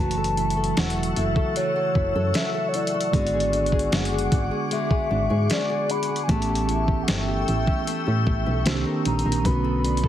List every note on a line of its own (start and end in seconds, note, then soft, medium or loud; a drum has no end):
0.00 0.73 F#1 loud
0.00 3.10 C#3 medium
0.00 3.09 E3 medium
0.00 1.55 F#3 medium
0.00 3.09 F#3 medium
0.00 3.10 A3 medium
0.00 3.11 F#4 medium
0.00 0.17 A4 medium
0.00 3.11 A4 medium
0.00 0.12 D5 medium
0.00 6.25 F#5 medium
0.00 0.81 A5 loud
0.00 8.62 C#6 medium
0.00 3.11 E6 medium
0.11 closed hi-hat medium
0.17 0.56 A4 medium
0.24 closed hi-hat medium
0.37 0.76 E4 medium
0.37 closed hi-hat medium
0.50 closed hi-hat medium
0.57 0.95 A4 medium
0.64 closed hi-hat medium
0.77 1.13 E1 medium
0.77 1.16 E4 medium
0.77 1.11 F#5 loud
0.77 snare loud
0.77 closed hi-hat medium
0.90 closed hi-hat medium
0.97 1.35 A4 medium
1.03 closed hi-hat medium
1.11 1.19 F#5 medium
1.16 1.35 F#1 medium
1.16 1.95 E4 medium
1.16 1.56 E5 loud
1.16 closed hi-hat medium
1.36 1.75 A4 medium
1.36 kick medium
1.56 3.36 F#3 medium
1.56 2.38 C#5 loud
1.56 closed hi-hat medium
1.76 2.14 A4 medium
1.95 2.13 F#1 loud
1.95 2.34 E4 medium
1.95 kick medium
2.15 2.33 F#2 medium
2.15 2.53 A4 medium
2.34 2.74 E4 medium
2.34 2.70 E5 loud
2.34 snare loud
2.34 closed hi-hat medium
2.54 2.93 A4 medium
2.68 2.77 C#5 medium
2.74 3.52 E4 medium
2.74 3.95 D5 loud
2.74 closed hi-hat medium
2.87 closed hi-hat medium
2.94 3.22 A4 medium
3.01 closed hi-hat medium
3.11 3.89 G#1 loud
3.11 6.24 D3 medium
3.11 6.25 G#3 medium
3.11 4.70 G#3 medium
3.11 6.25 B3 medium
3.11 6.26 D4 medium
3.11 6.26 G#4 medium
3.11 6.26 D6 medium
3.11 kick loud
3.11 closed hi-hat medium
3.16 6.26 F#4 medium
3.27 closed hi-hat medium
3.33 3.72 G#4 medium
3.40 closed hi-hat medium
3.53 3.91 D4 medium
3.53 closed hi-hat medium
3.66 closed hi-hat medium
3.72 4.11 G#4 medium
3.72 kick medium
3.79 closed hi-hat medium
3.92 4.28 F#1 loud
3.92 4.31 D4 medium
3.92 4.74 F#5 loud
3.92 snare loud
3.92 closed hi-hat medium
4.05 closed hi-hat medium
4.12 4.50 G#4 medium
4.19 closed hi-hat medium
4.32 4.50 G#1 loud
4.32 5.09 D4 medium
4.32 kick loud
4.32 closed hi-hat medium
4.51 4.90 G#4 medium
4.71 6.28 G#3 medium
4.71 5.51 E5 loud
4.71 closed hi-hat medium
4.91 5.29 G#4 medium
4.91 kick loud
5.11 5.29 G#1 medium
5.11 5.49 D4 medium
5.30 5.49 G#2 medium
5.30 5.69 G#4 medium
5.50 5.88 D4 medium
5.50 5.92 D5 medium
5.50 snare loud
5.50 closed hi-hat medium
5.70 6.08 G#4 medium
5.89 6.37 D4 medium
5.89 6.23 B5 loud
5.89 closed hi-hat medium
6.03 closed hi-hat medium
6.09 6.37 G#4 medium
6.16 closed hi-hat medium
6.24 8.61 E3 medium
6.24 6.32 G#5 medium
6.28 7.04 A1 loud
6.28 8.62 A3 medium
6.28 7.86 A3 medium
6.28 8.62 B3 medium
6.28 6.36 C4 soft
6.28 8.63 G4 medium
6.28 8.64 A4 medium
6.28 8.64 G5 medium
6.28 7.05 A5 loud
6.28 8.64 E6 medium
6.28 kick loud
6.28 closed hi-hat medium
6.37 8.66 C#4 medium
6.42 closed hi-hat medium
6.49 6.88 G4 medium
6.55 closed hi-hat medium
6.68 7.07 E4 medium
6.68 closed hi-hat medium
6.88 7.28 G4 medium
6.88 kick medium
7.03 7.11 F#5 medium
7.08 7.44 G1 medium
7.08 8.67 G5 medium
7.08 snare loud
7.08 closed hi-hat medium
7.28 7.66 G4 medium
7.48 7.66 A1 medium
7.48 8.25 E4 medium
7.48 closed hi-hat medium
7.67 8.05 G4 medium
7.67 kick medium
7.87 8.65 A3 medium
7.87 closed hi-hat medium
8.06 8.25 A2 medium
8.06 8.45 G4 medium
8.26 8.45 A1 medium
8.26 8.74 E4 medium
8.26 kick medium
8.46 8.65 B1 medium
8.46 8.74 G4 medium
8.65 8.85 C2 loud
8.65 9.45 D#3 medium
8.65 9.45 A#3 medium
8.65 9.44 C4 medium
8.65 9.45 C4 medium
8.65 9.45 D4 medium
8.65 8.73 F#4 medium
8.65 snare loud
8.65 closed hi-hat medium
8.73 9.49 G4 medium
8.86 9.24 A#4 medium
9.05 9.24 A#1 medium
9.05 9.53 D#4 medium
9.05 9.48 A#5 loud
9.05 closed hi-hat soft
9.05 open hi-hat medium
9.19 closed hi-hat medium
9.26 9.44 A#1 medium
9.26 9.53 A#4 medium
9.32 closed hi-hat medium
9.43 10.08 B1 loud
9.43 10.08 D3 medium
9.43 10.08 A3 medium
9.43 10.08 B3 medium
9.43 10.08 C#4 medium
9.43 10.08 F#4 medium
9.43 10.08 A4 medium
9.43 10.08 B5 medium
9.43 10.08 B5 loud
9.43 10.08 C#6 medium
9.43 kick loud
9.43 closed hi-hat medium
9.64 10.04 A4 medium
9.84 10.08 D4 medium
9.84 closed hi-hat medium
9.97 closed hi-hat medium
10.04 10.08 A4 medium
10.04 kick medium